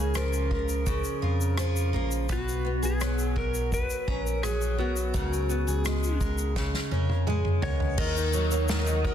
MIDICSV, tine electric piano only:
0, 0, Header, 1, 2, 480
1, 0, Start_track
1, 0, Tempo, 711744
1, 1545, Time_signature, 4, 2, 24, 8
1, 6167, End_track
2, 0, Start_track
2, 0, Title_t, "Tine electric piano"
2, 0, Program_c, 0, 4
2, 0, Note_on_c, 0, 37, 81
2, 317, Note_off_c, 0, 37, 0
2, 343, Note_on_c, 0, 37, 84
2, 677, Note_off_c, 0, 37, 0
2, 826, Note_on_c, 0, 41, 91
2, 1305, Note_off_c, 0, 41, 0
2, 1306, Note_on_c, 0, 34, 75
2, 1527, Note_off_c, 0, 34, 0
2, 1549, Note_on_c, 0, 35, 83
2, 1880, Note_off_c, 0, 35, 0
2, 1908, Note_on_c, 0, 35, 76
2, 2240, Note_off_c, 0, 35, 0
2, 2269, Note_on_c, 0, 35, 84
2, 2600, Note_off_c, 0, 35, 0
2, 2750, Note_on_c, 0, 34, 87
2, 3200, Note_off_c, 0, 34, 0
2, 3227, Note_on_c, 0, 35, 70
2, 3447, Note_off_c, 0, 35, 0
2, 3469, Note_on_c, 0, 37, 91
2, 3800, Note_off_c, 0, 37, 0
2, 3829, Note_on_c, 0, 37, 76
2, 4159, Note_off_c, 0, 37, 0
2, 4186, Note_on_c, 0, 37, 79
2, 4517, Note_off_c, 0, 37, 0
2, 4662, Note_on_c, 0, 41, 78
2, 5115, Note_off_c, 0, 41, 0
2, 5140, Note_on_c, 0, 37, 80
2, 5361, Note_off_c, 0, 37, 0
2, 5380, Note_on_c, 0, 39, 104
2, 6167, Note_off_c, 0, 39, 0
2, 6167, End_track
0, 0, End_of_file